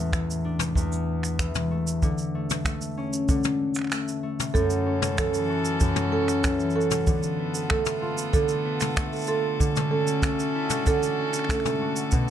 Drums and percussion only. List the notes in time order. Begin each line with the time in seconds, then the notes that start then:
0.13 finger snap, kick, shaker
0.30 shaker
0.59 mid tom, shaker
0.75 kick, shaker
0.92 shaker
1.23 finger snap, shaker
1.39 finger snap, kick, shaker
1.55 mid tom, shaker
1.87 shaker
2.02 kick, shaker
2.18 shaker
2.50 mid tom, shaker
2.65 finger snap, kick, shaker
2.81 shaker
3.13 shaker
3.29 kick, shaker
3.44 mid tom, shaker
3.75 finger snap, shaker
3.79 finger snap
3.81 finger snap
3.84 finger snap
3.87 finger snap
3.90 finger snap, shaker
3.92 finger snap
4.08 shaker
4.40 mid tom, shaker
4.55 kick, shaker
4.70 shaker
5.02 mid tom, shaker
5.18 finger snap, kick, shaker
5.34 shaker
5.65 shaker
5.80 kick, shaker
5.96 mid tom, shaker
6.28 finger snap, shaker
6.44 finger snap, kick, shaker
6.60 shaker
6.70 shaker
6.81 shaker
6.91 mid tom, shaker
7.07 kick, shaker
7.23 shaker
7.54 shaker
7.70 finger snap, kick
7.85 mid tom, shaker
8.18 shaker
8.34 kick, shaker
8.49 shaker
8.80 finger snap, mid tom, shaker
8.97 finger snap, kick, shaker
9.13 shaker
9.16 shaker
9.19 shaker
9.21 shaker
9.24 shaker
9.27 shaker
9.60 kick, shaker
9.76 mid tom, shaker
10.07 shaker
10.22 finger snap, kick, shaker
10.39 shaker
10.70 mid tom, shaker
10.86 kick, shaker
11.03 shaker
11.33 finger snap, shaker
11.39 finger snap
11.44 finger snap
11.49 finger snap, kick, shaker
11.60 finger snap
11.65 mid tom, shaker
11.96 shaker
12.11 kick, shaker